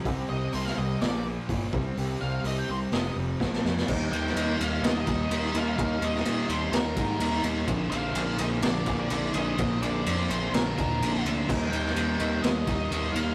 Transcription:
<<
  \new Staff \with { instrumentName = "Lead electric guitar" } { \time 4/4 \key c \minor \tempo 4 = 126 r8 ees''8 c''16 f''16 ees''8 d''8 r4. | r8 f''8 ees''16 g''16 c''8 ees''8 r4. | \key ees \major r8 g''4 f''8 ees''8. ees''8. f''8~ | f''8 ees''4 c''8 bes'4. r8 |
r8 f''4 ees''8 d''8. d''8. ees''8~ | ees''8 d''4 c''8 bes'4. r8 | r8 g''4. ees''8. ees''8. f''8 | }
  \new Staff \with { instrumentName = "Distorted electric guitar" } { \time 4/4 \key c \minor r1 | r1 | \key ees \major <ees bes ees'>2~ <ees bes ees'>8 <ees bes ees'>8 <ees bes ees'>4 | <ees bes ees'>2~ <ees bes ees'>8 <ees bes ees'>8 <ees bes ees'>4 |
<bes, f bes>2~ <bes, f bes>8 <bes, f bes>8 <bes, f bes>4 | <bes, f bes>2~ <bes, f bes>8 <bes, f bes>8 <bes, f bes>4 | <ees bes ees'>2~ <ees bes ees'>8 <ees bes ees'>8 <ees bes ees'>4 | }
  \new Staff \with { instrumentName = "Distorted electric guitar" } { \clef bass \time 4/4 \key c \minor <c g c'>8 <c g c'>8 <c g c'>8 <c g c'>8 <bes, f bes>8 <bes, f bes>8 <bes, f bes>8 <c g c'>8 | <c g c'>8 <c g c'>8 <c g c'>8 <c g c'>8 <f, c f>8 <f, c f>8 <bes, f bes>8 <bes, f bes>8 | \key ees \major <ees g bes ees'>8 <g bes ees'>8 <ees g bes ees'>4 <ees g bes ees'>8 <g bes ees'>8 <ees g bes ees'>8 <g bes ees'>8 | <ees g bes ees'>8 <g bes ees'>8 <ees g bes ees'>4 <ees g bes ees'>8 <g bes ees'>8 <ees g bes ees'>8 <g bes ees'>8 |
<bes, d f bes d'>8 <f bes d'>8 <d f bes d'>4 <bes, d f bes d'>8 <f bes d'>8 <d f bes d'>8 <f bes d'>8 | <bes, d f bes d'>8 <f bes d'>8 <d f bes d'>4 <bes, d f bes d'>8 <f bes d'>8 <d f bes d'>8 <f bes d'>8 | <ees g bes ees'>8 <g bes ees'>8 <ees g bes ees'>4 <ees g bes ees'>8 <g bes ees'>8 <ees g bes ees'>8 <g bes ees'>8 | }
  \new Staff \with { instrumentName = "Overdriven electric guitar" } { \clef bass \time 4/4 \key c \minor <c g c'>8 <c g c'>8 <c g c'>8 <c g c'>8 <bes, f bes>8 <bes, f bes>8 <bes, f bes>8 <c g c'>8 | <c g c'>8 <c g c'>8 <c g c'>8 <c g c'>8 <f, c f>8 <f, c f>8 <bes, f bes>8 <bes, f bes>8 | \key ees \major <ees g bes ees'>8 <g bes ees'>8 <ees g bes ees'>4. <g bes ees'>8 <ees g bes ees'>8 <g bes ees'>8 | <ees g bes ees'>8 <g bes ees'>8 <ees g bes ees'>4. <g bes ees'>8 <ees g bes ees'>8 <g bes ees'>8 |
<bes, d f bes d'>8 <f bes d'>8 <d f bes d'>4. <f bes d'>8 <bes, d f bes d'>8 <f bes d'>8 | <bes, d f bes d'>8 <f bes d'>8 <d f bes d'>4. <f bes d'>8 <bes, d f bes d'>8 <f bes d'>8 | <ees g bes ees'>8 <g bes ees'>8 <ees g bes ees'>4. <g bes ees'>8 <ees g bes ees'>8 <g bes ees'>8 | }
  \new Staff \with { instrumentName = "Fingered electric bass" } { \clef bass \time 4/4 \key c \minor c,8 c,8 c,8 c,8 bes,,4 g,,8 c,8 | c,8 c,8 c,8 c,8 f,,8 f,,8 bes,,8 f,8 | \key ees \major ees,8 ees,8 ees,8 ees,8 ees,8 ees,8 ees,8 ees,8 | ees,8 ees,8 bes,8 ees,8 ees,8 aes,8 ees,8 ees,8 |
bes,,8 bes,,8 bes,,8 bes,,8 bes,,8 bes,,8 bes,,8 bes,,8 | bes,,8 bes,,8 f,8 bes,,8 bes,,8 ees,8 bes,,8 d,8 | ees,8 ees,8 ees,8 ees,8 ees,8 ees,8 ees,8 ees,8 | }
  \new DrumStaff \with { instrumentName = "Drums" } \drummode { \time 4/4 <hho bd>4 hho16 sn8. <hho sn>4 <hho bd>8 bd8 | hho4 hho4 <hho sn>4 <bd sn>16 sn16 sn16 sn16 | <cymc bd>8 cymr16 sn16 cymr8 cymr8 <cymr sn>8 <bd cymr>8 cymr8 cymr8 | <bd cymr>8 cymr16 sn16 cymr8 cymr8 <cymr sn>8 <bd cymr>8 cymr8 cymr8 |
<bd cymr>8 cymr8 cymr8 cymr8 <cymr sn>8 <bd cymr>8 cymr8 cymr8 | <bd cymr>8 cymr8 cymr8 cymr8 <cymr sn>8 <bd cymr>8 cymr8 cymr8 | <cymc bd>8 cymr16 sn16 cymr8 cymr8 <cymr sn>8 <bd cymr>8 cymr8 cymr8 | }
>>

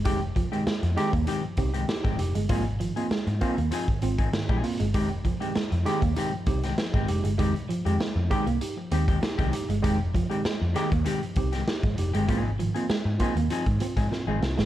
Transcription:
<<
  \new Staff \with { instrumentName = "Tine electric piano" } { \time 4/4 \key f \minor \tempo 4 = 98 <aes ees' g'>16 r16 f16 <aes ees' g'>16 r8 <aes ees' g'>16 r16 <ees' g'>16 f16 <ees' g'>16 r16 <ees' g'>16 f16 <ees' g'>16 r16 | <bes c' f'>16 r16 <aes, ees>16 <bes c' f'>16 r8 <bes c' f'>16 r16 <c' f'>16 <aes, ees>16 <c' f'>16 r16 <aes, ees>16 r16 <bes c' f'>16 <c' f'>16 | <aes ees' g'>16 r16 f16 <aes ees' g'>16 r8 <aes ees' g'>16 r16 <ees' g'>16 f16 <ees' g'>16 r16 f16 r16 <aes ees' g'>16 ees'16 | <aes ees' g'>16 r16 f16 <aes ees' g'>16 r8 <aes ees' g'>16 r16 <ees' g'>16 f16 <ees' g'>16 r16 <ees' g'>16 f16 <ees' g'>16 r16 |
<aes ees' g'>16 r16 f16 <aes ees' g'>16 r8 <aes ees' g'>16 r16 <ees' g'>16 f16 <ees' g'>16 r16 <ees' g'>16 f16 <ees' g'>16 r16 | <bes c' f'>16 r16 <aes, ees>16 <bes c' f'>16 r8 <bes c' f'>16 r16 <c' f'>16 <aes, ees>16 <c' f'>16 r16 <c' f'>16 <aes, ees>16 <c' f'>16 r16 | }
  \new Staff \with { instrumentName = "Hollow-body jazz guitar" } { \time 4/4 \key f \minor <ees aes c' g'>16 r8 <ees aes c' g'>16 r8 <ees aes c' g'>16 r16 <ees aes c' g'>16 r8 <ees aes c' g'>16 r16 <ees aes c' g'>16 r8 | <f c' ees' aes'>16 r8 <f c' ees' aes'>16 r8 <f c' ees' aes'>16 r16 <f c' ees' aes'>16 r8 <f c' ees' aes'>16 r16 <f c' ees' aes'>16 r8 | <ees aes c' g'>16 r8 <ees aes c' g'>16 r8 <ees aes c' g'>16 r16 <ees aes c' g'>16 r8 <ees aes c' g'>16 r16 <ees aes c' g'>16 r8 | <ees aes c' g'>16 r8 <ees aes c' g'>16 r8 <ees aes c' g'>16 r8. <ees aes c' g'>16 <ees aes c' g'>16 r16 <ees aes c' g'>16 r8 |
<ees aes c' g'>16 r8 <ees aes c' g'>16 r8 <ees aes c' g'>16 r16 <ees aes c' g'>16 r8 <ees aes c' g'>16 r8. <ees aes c' g'>16 | <f c' ees' aes'>16 r8 <f c' ees' aes'>16 r8 <f c' ees' aes'>16 r16 <f c' ees' aes'>16 r8 <f c' ees' aes'>16 r16 <f c' ees' aes'>16 r8 | }
  \new Staff \with { instrumentName = "Clean electric guitar" } { \clef bass \time 4/4 \key f \minor aes16 r16 f16 r16 aes16 r8 bes16 r8 c'16 r8 aes16 r16 aes16 | aes16 r16 f16 r16 aes16 r8 bes16 r8 c'16 r8 aes16 r16 aes16 | aes16 r16 f16 r16 aes16 r8 bes16 r8 c'16 r8 aes16 r16 aes16 | aes16 r16 f16 r16 aes16 r8 bes16 r8 c'16 r8 aes16 r16 aes16 |
aes16 r16 f16 r16 aes16 r8 bes16 r8 c'16 r8 aes16 r16 aes16 | aes16 r16 f16 r16 aes16 r8 bes16 r8 c'16 r8 aes16 r16 aes16 | }
  \new Staff \with { instrumentName = "Picked electric bass" } { \clef bass \time 4/4 \key f \minor f,,8. r8 f,16 r16 ees,16 r8 c,8 r16 aes,,16 f,,16 g,,16 | aes,,8. r8 aes,16 r16 ees,16 r8 aes,,8 r16 bes,,16 r16 g,,16 | f,,8. r8 f,16 r16 ees,16 r8 c,8 r16 aes,,16 f,,16 g,,16 | f,,16 r8 f,16 r16 f,16 r16 c,16 r8 ees,8 r16 c,16 r16 g,,16 |
f,,8. r8 f,16 r16 ees,16 r8 c,8 r16 aes,,16 f,,16 g,,16 | aes,,8. r8 aes,16 r16 ees,16 r16 aes,16 r16 aes,16 r16 aes,,16 c,16 aes,,16 | }
  \new DrumStaff \with { instrumentName = "Drums" } \drummode { \time 4/4 <hh bd>8 <hh bd>16 hh16 sn16 hh16 <hh sn>16 <hh bd>16 hh8 <hh bd>16 hh16 sn16 <hh bd sn>16 hh16 hh16 | <hh bd>8 hh16 hh16 sn16 hh16 <hh bd>16 hh16 hh16 <hh bd>16 hh16 <hh bd>16 sn16 <bd sn>16 hho16 hh16 | <hh bd>8 <hh bd>16 hh16 sn16 hh16 <hh sn>16 <hh bd>16 hh8 <hh bd>16 <hh sn>16 sn16 <bd sn>16 hh16 hh16 | <hh bd>16 hh16 hh16 hh16 sn8 <hh bd>16 hh16 hh8 hh16 <hh bd>16 sn16 <hh bd sn>16 hh16 hh16 |
<hh bd>8 <hh bd>16 hh16 sn8 <hh sn>16 <hh bd>16 hh16 hh16 <hh bd>16 <hh sn>16 sn16 <hh bd sn>16 hh16 hh16 | <hh bd>8 hh16 hh16 sn8 <hh bd>16 hh16 hh16 <hh bd>16 hh16 <hh bd sn>16 sn8 sn16 sn16 | }
>>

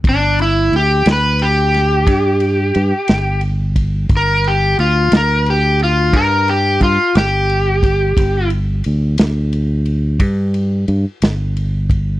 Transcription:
<<
  \new Staff \with { instrumentName = "Electric slide guitar" } { \time 12/8 \key c \major \tempo 4. = 59 d'8 e'8 g'8 b'8 g'2. r4 | bes'8 g'8 f'8 bes'8 g'8 f'8 bes'8 g'8 f'8 g'4.~ | g'8 r1 r4. | }
  \new Staff \with { instrumentName = "Fingered electric bass" } { \clef bass \time 12/8 \key c \major g,,4 d,8 d,4. g,4 g,16 r16 g,,4. | g,,4 d,8 d,4. g,4 g,16 r16 g,,4. | g,,4 d,8 d,4. g,4 g,16 r16 g,,4. | }
  \new DrumStaff \with { instrumentName = "Drums" } \drummode { \time 12/8 <bd cymr>8 cymr8 cymr8 <cymr sn>8 cymr8 <cymr sn>8 <bd cymr>8 cymr8 cymr8 <cymr sn>8 cymr8 <bd cymr>8 | <bd cymr>8 cymr8 cymr8 <cymr sn>8 cymr8 cymr8 <bd cymr>8 cymr8 <bd cymr>8 <cymr sn>8 cymr8 <bd cymr>8 | <bd cymr>8 cymr8 cymr8 <cymr sn>8 cymr8 cymr8 <bd cymr>8 cymr8 cymr8 <cymr sn>8 cymr8 <bd cymr>8 | }
>>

